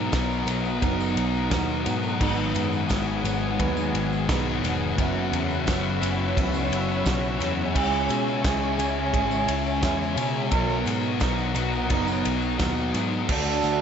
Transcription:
Already playing: distorted electric guitar B2 F#3 B3, clean electric guitar B2 D#3 F#3 B3 D#4 A#4, string machine F#5 A#5 D#6
0.11 picked electric bass B1, distorted electric guitar B2 F#3 B3, clean electric guitar F#3 B3 D#4 A#4, kick, snare, ride, tambourine
0.30 tambourine
0.46 picked electric bass B1, distorted electric guitar F#3 B3, clean electric guitar F#3 B3 D#4 A#4, ride, tambourine
0.65 tambourine
0.81 picked electric bass F#1, clean electric guitar B2 D#3 F#3 B3 D#4 A#4, kick, ride, tambourine
1.00 tambourine
1.16 picked electric bass B1, ride, tambourine
1.34 tambourine
1.50 picked electric bass D#2, distorted electric guitar B2 F#3 B3, clean electric guitar F#3 B3 D#4 A#4, kick, snare, ride, tambourine
1.70 tambourine
1.86 picked electric bass G#2, distorted electric guitar F#3 B3, ride, tambourine
2.03 tambourine
2.19 picked electric bass G#1, clean electric guitar G#2 D#3 F#3 B3 D#4 B4, distorted electric guitar G#2 D#3 G#3, string machine G#5, kick, tambourine, crash
2.55 picked electric bass F#2, ride, tambourine
2.73 tambourine
2.89 picked electric bass G#1, distorted electric guitar G#2 D#3 G#3, clean electric guitar F#3 B3 D#4 B4, kick, snare, ride, tambourine
3.24 picked electric bass G#1, distorted electric guitar D#3 G#3, clean electric guitar F#3 B3 D#4 B4, ride, tambourine
3.58 picked electric bass D#2, clean electric guitar G#2 D#3 F#3 B3 D#4 B4, kick, ride
3.77 tambourine
3.94 picked electric bass G#1, ride, tambourine
4.12 tambourine
4.28 picked electric bass B1, distorted electric guitar G#2 D#3 G#3, clean electric guitar F#3 B3 D#4 B4, kick, snare, ride, tambourine
4.62 picked electric bass E1, distorted electric guitar D#3 G#3, snare, ride, tambourine
4.97 picked electric bass F#1, distorted electric guitar F#2 C#3 F#3, clean electric guitar F#3 B3 C#4 E4, string machine C#5 B5 E6, kick, ride, tambourine
5.32 picked electric bass E2, ride
5.50 tambourine
5.66 picked electric bass F#1, distorted electric guitar F#2 C#3 F#3, clean electric guitar F#3 B3 C#4 E4, kick, snare, ride, tambourine
6.00 picked electric bass F#1, distorted electric guitar C#3 F#3, clean electric guitar B3 C#4 E4, ride, tambourine
6.36 picked electric bass C#2, clean electric guitar F#3 B3 C#4 E4, kick, ride
6.54 tambourine
6.70 picked electric bass F#1, ride, tambourine
6.89 tambourine
7.04 picked electric bass B1, distorted electric guitar F#2 C#3 F#3, clean electric guitar F#3 B3 C#4 E4, kick, snare, ride, tambourine
7.24 tambourine
7.40 picked electric bass E2, distorted electric guitar C#3 F#3, snare, ride, tambourine
7.74 picked electric bass C#2, clean electric guitar C#3 G#3 C#4 E4 G#4, distorted electric guitar C#3 G#3 C#4, string machine E5 G#5, kick, tambourine, crash
8.09 picked electric bass B2, ride, tambourine
8.28 tambourine
8.43 picked electric bass C#2, distorted electric guitar C#3 G#3 C#4, clean electric guitar G#3 C#4 E4 G#4, kick, snare, ride, tambourine
8.77 picked electric bass C#2, distorted electric guitar G#3 C#4, clean electric guitar C#4 E4 G#4, ride, tambourine
9.12 picked electric bass G#1, clean electric guitar C#3 G#3 C#4 E4 G#4, kick, ride
9.31 tambourine
9.47 picked electric bass C#2, ride, tambourine
9.66 tambourine
9.81 picked electric bass E2, distorted electric guitar C#3 G#3 C#4, clean electric guitar G#3 C#4 E4 G#4, kick, snare, ride, tambourine
10.00 tambourine
10.15 picked electric bass B2, distorted electric guitar G#3 C#4, ride, tambourine
10.50 picked electric bass B1, distorted electric guitar B2 F#3 B3, clean electric guitar B2 D#3 F#3 B3 D#4 A#4, string machine F#5 A#5 D#6, kick, ride, tambourine
10.70 tambourine
10.86 picked electric bass G#2, ride, tambourine
11.03 tambourine
11.19 picked electric bass B1, distorted electric guitar B2 F#3 B3, clean electric guitar F#3 B3 D#4 A#4, kick, snare, ride, tambourine
11.38 tambourine
11.54 picked electric bass B1, distorted electric guitar F#3 B3, clean electric guitar F#3 B3 D#4 A#4, ride, tambourine
11.73 tambourine
11.89 picked electric bass F#1, clean electric guitar B2 D#3 F#3 B3 D#4 A#4, kick, ride, tambourine
12.08 tambourine
12.25 picked electric bass B1, ride, tambourine
12.42 tambourine
12.58 picked electric bass D#2, distorted electric guitar B2 F#3 B3, clean electric guitar F#3 B3 D#4 A#4, kick, snare, ride, tambourine
12.77 tambourine
12.94 picked electric bass G#2, distorted electric guitar F#3 B3, snare, ride, tambourine
13.12 tambourine
13.27 picked electric bass D2, clean electric guitar D3 D4 F#4 A4, distorted electric guitar D3 A3 D4, string machine A4 D5 F#5 D6, kick, crash, tambourine
13.62 picked electric bass D2, closed hi-hat, tambourine

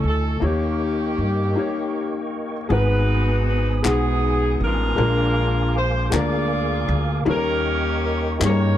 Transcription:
Already playing: upright piano A2 A3 E4 G#4 C#5 D#5 G#5, tonewheel organ A3 E4 G#5 C#6
0.04 upright bass D2, saxophone section A4
0.40 upright bass D#2, upright piano D#3 A#3 D#4 G4 C#5, saxophone section A#3 C#4, tonewheel organ A#4 D#5 G5 C#6
0.46 saxophone section G4
1.18 upright bass G2
1.55 upright piano A#3 D#4 G4 C#5
2.69 upright bass G#1, upright piano G#2 G#3 B3 D#4 F#4 A#4, tonewheel organ B3 G#5 D#6, saxophone section B4
2.73 saxophone section D#4 F#4
2.80 upright piano B4
3.48 saxophone section B4
3.83 upright bass B1, upright piano G#3 B3 D#4 F#4 G#4, clap
3.88 saxophone section B3 D#4 G#4
4.61 upright bass A1
4.65 saxophone section D4 F4 A#4
4.96 upright bass A#1, upright piano A#2 G#3 A#3 D4 F4 A#4, tonewheel organ A#4 F5 D6
5.78 saxophone section C5
6.10 upright bass D2, upright piano G#3 A#3 D4 F4 A#4, clap
6.14 saxophone section F4 G#4 D5
6.88 upright bass D2
7.25 upright bass D#2, upright piano D#3 G3 A#3 C#4 D#4 A4, tonewheel organ D#5 G5 C#6
7.30 saxophone section C#4 G4 A#4
7.35 upright piano A#4
8.06 saxophone section A#4
8.39 upright bass G2, upright piano G3 A#3 C#4 D#4 G#4, clap
8.44 saxophone section G4 A#4 C#5
8.49 upright piano A#4

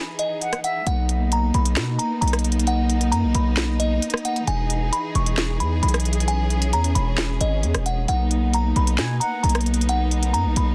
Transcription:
Already playing: string section E3 D#4 G#4, synth bell B5
0.19 synth bell D#5, closed hi-hat
0.41 flute F#5, closed hi-hat
0.53 cross-stick, closed hi-hat
0.64 flute E5, synth bell F#5, closed hi-hat
0.86 808-style bass B1, string section A#3 B3 D#4, synth bell F#5, closed hi-hat
1.09 closed hi-hat
1.32 synth bell A#5, closed hi-hat
1.54 808-style bass B1, synth bell B5, closed hi-hat
1.65 closed hi-hat
1.76 808-style bass B2, snare, clap, closed hi-hat
1.99 synth bell A#5, closed hi-hat
2.21 808-style bass B1, synth bell A#5, closed hi-hat
2.28 closed hi-hat
2.33 cross-stick, closed hi-hat
2.39 closed hi-hat
2.44 closed hi-hat
2.52 closed hi-hat
2.59 closed hi-hat
2.67 synth bell F#5, closed hi-hat
2.90 closed hi-hat
3.01 closed hi-hat
3.12 808-style bass F#2, synth bell A#5, closed hi-hat
3.23 808-style bass B1
3.35 808-style bass B1, synth bell B5, closed hi-hat
3.57 snare, clap, closed hi-hat
3.80 synth bell D#5, closed hi-hat
4.02 closed hi-hat
4.10 cross-stick, closed hi-hat
4.17 closed hi-hat
4.25 synth bell F#5, closed hi-hat
4.36 closed hi-hat
4.47 808-style bass E1, string section E3 G#4, synth bell G#5, closed hi-hat
4.70 closed hi-hat
4.93 synth bell B5, closed hi-hat
5.15 808-style bass E1, synth bell C#6, closed hi-hat
5.26 closed hi-hat
5.37 snare, clap, closed hi-hat
5.60 808-style bass E2, synth bell B5, closed hi-hat
5.83 808-style bass B1, synth bell B5, closed hi-hat
5.88 closed hi-hat
5.94 cross-stick, closed hi-hat
6.00 closed hi-hat
6.05 closed hi-hat
6.13 closed hi-hat
6.20 closed hi-hat
6.28 string section C#4, synth bell G#5, closed hi-hat
6.50 closed hi-hat, open hi-hat
6.62 closed hi-hat
6.73 808-style bass E2, synth bell A#5, closed hi-hat
6.84 closed hi-hat
6.95 808-style bass E1, synth bell B5, closed hi-hat
7.18 cross-stick, snare, clap, closed hi-hat
7.41 808-style bass G#1, synth bell D#5, closed hi-hat
7.63 808-style bass E2, closed hi-hat
7.75 808-style bass E1, cross-stick, closed hi-hat
7.86 synth bell F#5, closed hi-hat
8.08 808-style bass B1, string section A#3 B3 D#4, synth bell F#5, closed hi-hat
8.31 closed hi-hat
8.54 synth bell A#5, closed hi-hat
8.76 808-style bass B1, synth bell B5, closed hi-hat
8.87 closed hi-hat
8.98 808-style bass B2, flute G#5, snare, clap, closed hi-hat
9.20 flute F#5, synth bell A#5, closed hi-hat
9.43 808-style bass B1, synth bell A#5, closed hi-hat
9.49 closed hi-hat
9.55 cross-stick, closed hi-hat
9.61 closed hi-hat
9.66 closed hi-hat
9.74 closed hi-hat
9.81 closed hi-hat
9.89 synth bell F#5, closed hi-hat
10.11 closed hi-hat
10.23 closed hi-hat
10.34 808-style bass F#2, synth bell A#5, closed hi-hat
10.45 808-style bass B1
10.56 808-style bass B1, synth bell B5, closed hi-hat

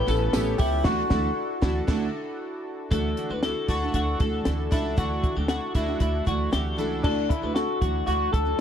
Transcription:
Already playing: steel-string acoustic guitar E3 E4 A4 C#5, synth keys B3 C#4 E4 G4 A4, clean electric guitar B4
0.07 upright bass A1, synth keys B3 C#4 E4 A4, clean electric guitar A4, ride, tambourine
0.33 upright bass A1, steel-string acoustic guitar A3 B3 E4 A4 C#5, synth keys B3 C#4 E4 G4, snare, ride, tambourine
0.58 upright bass C#2, synth keys B3 C#4 E4 A4, clean electric guitar E4 G4, kick, open hi-hat, ride, tambourine
0.84 upright bass D2, steel-string acoustic guitar E3 A3 D4 F#4, synth keys D4 E4 F#4 A4, clean electric guitar F#4, kick, snare, crash
1.10 upright bass D2, steel-string acoustic guitar E3 A3 D4 F#4, synth keys D4 E4 F#4 A4, kick, snare
1.61 upright bass D2, steel-string acoustic guitar E3 A3 D4 F#4, synth keys D4 E4 F#4 A4, kick, snare
1.87 upright bass D2, steel-string acoustic guitar A3 D4 F#4, synth keys D4 E4 F#4 A4, kick, snare, crash
2.91 upright bass D2, steel-string acoustic guitar D3 E3 A3 D4 F#4, synth keys D4 E4 F#4, clean electric guitar A4, kick, closed hi-hat
3.17 synth keys D4 E4 F#4, closed hi-hat
3.30 upright bass D2, steel-string acoustic guitar A3 D4 F#4, clean electric guitar B4
3.43 synth keys D4 E4 F#4, clean electric guitar A4, snare, closed hi-hat
3.68 upright bass D2, synth keys D4 E4 A4, clean electric guitar F#4, kick, closed hi-hat
3.82 steel-string acoustic guitar A3 D4 F#4
3.94 upright bass D2, synth keys D4 E4 F#4, clean electric guitar F#4, kick, closed hi-hat
4.19 upright bass D2, steel-string acoustic guitar E3 A3 D4, synth keys D4 E4 A4, clean electric guitar A4, kick, closed hi-hat
4.23 steel-string acoustic guitar F#4
4.45 upright bass D2, steel-string acoustic guitar E3 A3 D4 F#4, synth keys D4 E4 A4, snare, closed hi-hat
4.71 upright bass C#2, steel-string acoustic guitar E3 A3 D4 F#4, synth keys D4 E4 A4, clean electric guitar E4, kick, closed hi-hat
4.96 upright bass D2, steel-string acoustic guitar D3 E3 A3 D4 F#4, synth keys D4 E4 F#4, clean electric guitar F#4, kick, closed hi-hat
5.22 synth keys D4 E4 F#4, kick, closed hi-hat
5.36 upright bass D2, steel-string acoustic guitar A3 D4 F#4, clean electric guitar G4
5.48 synth keys D4 E4 A4, clean electric guitar F#4, snare, closed hi-hat
5.74 upright bass D2, synth keys D4 E4 F#4, clean electric guitar E4, kick, closed hi-hat
5.86 steel-string acoustic guitar A3 D4 F#4
6.00 upright bass D2, synth keys D4 E4 A4, clean electric guitar E4, kick, closed hi-hat
6.25 upright bass D2, steel-string acoustic guitar E3 A3 D4 F#4, synth keys D4 E4 F#4, clean electric guitar F#4, kick, closed hi-hat
6.51 upright bass D2, steel-string acoustic guitar E3 A3 D4 F#4, synth keys D4 E4 F#4, clean electric guitar G4, snare, closed hi-hat
6.77 upright bass C#2, steel-string acoustic guitar E3 A3 D4 F#4, synth keys D4 E4 A4, clean electric guitar A4, closed hi-hat
7.03 upright bass D2, steel-string acoustic guitar D3 E3 A3 D4 F#4, clean electric guitar D4 A4, synth keys D4 E4 F#4, kick, crash
7.29 synth keys D4 E4 A4, clean electric guitar E4, kick, closed hi-hat
7.42 upright bass D2, steel-string acoustic guitar A3 D4 F#4, clean electric guitar B4
7.54 synth keys D4 E4 F#4, clean electric guitar F#4 A4, snare, closed hi-hat
7.81 upright bass D2, steel-string acoustic guitar D3 E3 A3 D4 F#4, synth keys D4 E4 F#4, clean electric guitar F#4, kick, closed hi-hat
8.06 upright bass D2, steel-string acoustic guitar E3 A3 D4 F#4, synth keys D4 E4 F#4, clean electric guitar F#4, closed hi-hat
8.33 upright bass D2, synth keys D4 E4 F#4, clean electric guitar A4, kick, closed hi-hat
8.45 steel-string acoustic guitar D3 E3 A3 D4 F#4

